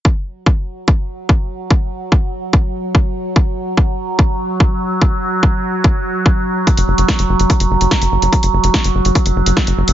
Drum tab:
HH |----------------|----------------|----------------|----------------|
SD |----------------|----------------|----------------|----------------|
BD |o---o---o---o---|o---o---o---o---|o---o---o---o---|o---o---o---o---|

HH |xx-xxx-xxx-xxx-x|xx-xxx-xxx-xxx-x|
SD |----o-------o---|----o-------o---|
BD |o---o---o---o---|o---o---o---o---|